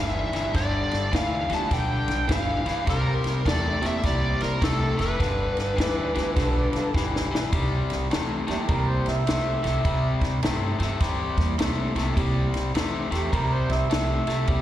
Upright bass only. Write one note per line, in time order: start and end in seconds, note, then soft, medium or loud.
0.00 0.24 G1 medium
0.33 0.49 G1 medium
0.55 0.82 G1 medium
0.92 1.08 G1 medium
1.13 1.40 D2 medium
1.50 1.66 D2 medium
1.71 1.98 B1 medium
2.08 2.24 B1 medium
2.29 2.56 G1 medium
2.66 2.82 G1 medium
2.87 3.14 C2 medium
3.25 3.40 C2 medium
3.46 3.73 E2 medium
3.83 3.98 E2 medium
4.04 4.31 C2 medium
4.42 4.57 C2 medium
4.62 4.89 C2 medium
4.99 5.15 F1 medium
5.20 5.47 G1 medium
5.58 5.73 G1 medium
5.78 6.05 D2 medium
6.16 6.31 D2 medium
6.37 6.64 B1 medium
6.74 6.89 B1 medium
6.95 7.22 G1 medium
7.32 7.48 B1 medium
7.53 7.80 C2 medium
7.91 8.06 C2 medium
8.12 8.38 E2 medium
8.49 8.64 E2 medium
8.69 8.96 C2 medium
9.06 9.22 C2 medium
9.28 9.55 C2 medium
9.64 9.80 C2 medium
9.85 10.12 C2 medium
10.21 10.37 C2 medium
10.43 10.70 G2 medium
10.80 10.95 G2 medium
11.01 11.28 E2 medium
11.37 11.53 E2 medium
11.59 11.85 C2 medium
11.95 12.11 C2 medium
12.17 12.44 C2 medium
12.53 12.69 C2 medium
12.74 13.01 E2 medium
13.11 13.27 E2 medium
13.33 13.60 C2 medium
13.69 13.85 C2 medium
13.90 14.17 C2 medium
14.27 14.43 C2 medium
14.48 14.62 C2 medium